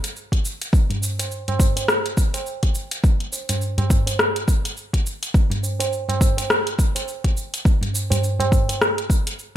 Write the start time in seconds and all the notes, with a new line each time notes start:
0.04 closed hi-hat, cabasa
0.16 cabasa
0.32 kick, closed hi-hat
0.45 cabasa
0.62 closed hi-hat, cabasa
0.73 kick, cabasa
0.90 closed hi-hat, tabla ge
1.02 tabla tin, cabasa
1.19 closed hi-hat, tabla tin, cabasa
1.32 cabasa
1.48 closed hi-hat, tabla na, tabla ge
1.59 kick, tabla na, cabasa
1.76 closed hi-hat, tabla tin, cabasa
1.88 cross-stick, cabasa
2.06 closed hi-hat
2.17 kick, cabasa
2.34 closed hi-hat, tabla na, tabla tin, cabasa
2.46 cabasa
2.63 kick, closed hi-hat
2.75 cabasa
2.91 closed hi-hat, cabasa
3.04 kick, cabasa
3.20 closed hi-hat
3.32 tabla tin, cabasa
3.49 closed hi-hat, tabla tin, tabla ge, cabasa
3.61 cabasa
3.78 closed hi-hat, tabla na, tabla ge
3.90 kick, cabasa
4.07 closed hi-hat, tabla tin, cabasa
4.19 cross-stick, cabasa
4.36 closed hi-hat
4.48 kick, cabasa
4.65 closed hi-hat, cabasa
4.77 cabasa
4.94 kick, closed hi-hat
5.06 cabasa
5.23 closed hi-hat, cabasa
5.34 kick, cabasa
5.50 closed hi-hat, tabla ge
5.63 tabla tin, cabasa
5.80 closed hi-hat, tabla tin, cabasa
5.93 cabasa
6.09 closed hi-hat, tabla na, tabla ge
6.21 kick, tabla na, cabasa
6.37 closed hi-hat, tabla tin, cabasa
6.50 cross-stick, cabasa
6.67 closed hi-hat
6.79 kick, cabasa
6.95 closed hi-hat, tabla na, tabla tin, cabasa
7.08 cabasa
7.24 kick, closed hi-hat
7.37 cabasa
7.54 closed hi-hat, cabasa
7.65 kick, cabasa
7.81 closed hi-hat, tabla ge
7.94 tabla tin, cabasa
8.10 closed hi-hat, tabla tin, tabla ge, cabasa
8.24 cabasa
8.39 closed hi-hat, tabla na, tabla ge
8.52 kick, tabla na, cabasa
8.69 closed hi-hat, tabla tin, cabasa
8.82 cross-stick, cabasa
8.98 closed hi-hat
9.10 kick, cabasa
9.27 closed hi-hat, cabasa
9.39 cabasa